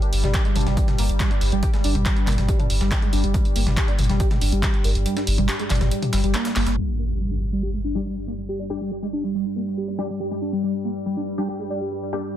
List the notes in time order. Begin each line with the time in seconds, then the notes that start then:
Already playing: G2 G3
0.02 D4, closed hi-hat
0.13 G1, closed hi-hat, open hi-hat
0.24 G1 G3, snare, closed hi-hat, mid tom
0.34 G4, kick, snare, clap, closed hi-hat
0.45 G#3, closed hi-hat
0.56 G1 D4, closed hi-hat, open hi-hat, mid tom
0.61 closed hi-hat
0.66 G1 G3, snare, closed hi-hat, mid tom
0.77 G3, kick, closed hi-hat
0.88 snare, closed hi-hat, mid tom
0.98 G1 A#3, open hi-hat
1.09 G1, closed hi-hat
1.20 G3, kick, snare, clap, closed hi-hat
1.31 D4, closed hi-hat
1.41 G1, closed hi-hat, open hi-hat
1.52 G1 G3, closed hi-hat
1.63 G4, kick, closed hi-hat
1.74 G#3, snare, closed hi-hat
1.84 G1 D4, closed hi-hat, open hi-hat
1.95 G1 G3, closed hi-hat, mid tom
2.06 G3, kick, snare, clap, closed hi-hat
2.17 closed hi-hat
2.27 G1 A#3, clap, closed hi-hat, open hi-hat, mid tom
2.33 closed hi-hat
2.38 G1, snare, closed hi-hat, mid tom
2.48 G3, kick, closed hi-hat
2.59 D4, closed hi-hat, mid tom
2.70 G1, closed hi-hat, open hi-hat
2.81 G1 G3, snare, closed hi-hat
2.91 G4, kick, snare, clap, closed hi-hat
3.02 G#3, closed hi-hat
3.13 G1 D4, closed hi-hat, open hi-hat
3.24 G1 G3, closed hi-hat
3.34 G3, kick, closed hi-hat
3.45 closed hi-hat
3.56 G1 A#3, closed hi-hat, open hi-hat
3.67 G1, snare, closed hi-hat, mid tom
3.77 G3, kick, snare, clap, closed hi-hat
3.88 D4, closed hi-hat
3.99 G1, closed hi-hat, open hi-hat, mid tom
4.04 closed hi-hat
4.09 G1 G3, snare, closed hi-hat, mid tom
4.20 G4, kick, closed hi-hat
4.31 G#3, snare, closed hi-hat, mid tom
4.41 G1 D4, open hi-hat
4.52 G1 G3, closed hi-hat
4.63 kick, snare, clap, closed hi-hat
4.74 closed hi-hat
4.84 G1 A#3, closed hi-hat, open hi-hat
4.95 G1, closed hi-hat
5.06 G3, closed hi-hat
5.17 D4, snare, closed hi-hat
5.27 G1, closed hi-hat, open hi-hat
5.38 G1 G3, closed hi-hat, mid tom
5.49 G4, snare, clap, closed hi-hat
5.59 G#3, closed hi-hat
5.70 G1 D4, clap, closed hi-hat, open hi-hat, mid tom
5.75 closed hi-hat
5.81 G1 G3, snare, closed hi-hat, mid tom
5.91 G3, closed hi-hat
6.02 closed hi-hat, mid tom
6.13 G1 G3, snare, closed hi-hat, open hi-hat
6.24 G1 G3, closed hi-hat
6.34 A#3, snare, clap, closed hi-hat
6.45 A#3, snare, closed hi-hat
6.56 G1 A#3, snare, clap, closed hi-hat, open hi-hat
6.66 G1 A#3, snare, closed hi-hat
6.77 G2 G3, crash, impact
6.99 A#3
7.20 G3
7.31 D4
7.52 G3
7.63 G4
7.74 G#3
7.84 D4
7.95 G3 D4 G4
8.06 G3
8.27 A#3
8.48 G3
8.59 D4
8.70 G3 D4 G4
8.81 G3
8.91 G4
9.02 G#3
9.13 D4
9.24 G3
9.34 G3
9.56 A#3
9.77 G3
9.88 D4
9.99 G3 D4 G4
10.09 G3
10.20 G4
10.31 G#3
10.41 D4
10.52 G3
10.63 G3
10.84 A#3
11.06 G3
11.17 D4
11.38 G3 D4 G4
11.49 G4
11.59 G#3
11.70 D4
11.81 G3
11.91 G3
12.13 G3 A#3 D4 G4